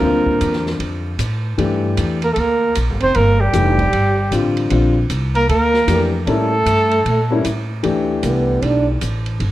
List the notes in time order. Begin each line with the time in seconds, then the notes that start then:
Already playing: A#3 A#4
0.01 D2 D3 G3 C4 F4
0.26 muted upright bass stroke, kick
0.41 E2, hi-hat pedal, ride
0.53 snare
0.66 snare
0.79 F2, ride
1.18 A2, hi-hat pedal, ride
1.58 G2 E3 A3 D4 G4, ride
1.97 E2, hi-hat pedal, ride
2.22 A#3 A#4, ride
2.32 A3 A4, ride
2.36 D2 A#3 A#4
2.75 A#1, hi-hat pedal, ride
2.90 G1
3.00 F1 C4 C5, ride
3.15 G1 A#3 A#4, ride
3.40 G3 G4
3.53 F1 E3 A3 D4 G4, hi-hat pedal, ride
3.79 kick, ride
3.93 G1, ride
4.31 A1 D3 G3 C4 F4, hi-hat pedal, ride
4.57 ride
4.70 A#1 D3 G3 C4 F4, ride
5.10 C2, hi-hat pedal, ride
5.35 A#3 A#4, ride
5.49 D2 A#3 A#4, ride
5.74 snare
5.87 F2 E3 A3 D4 G4, hi-hat pedal, ride
6.26 A2 G3 A3 A#3 C#4 E4 A4, ride
6.66 G2, hi-hat pedal, ride
6.91 ride
7.05 A#2, ride
7.31 G3 A#3 C#4 E4
7.45 A2, hi-hat pedal, ride
7.83 D2 E3 A3 D4 G4, ride
8.23 C2 B3, hi-hat pedal, ride
8.62 B1 D4, ride
9.01 A1, hi-hat pedal, ride
9.26 ride
9.40 G1, ride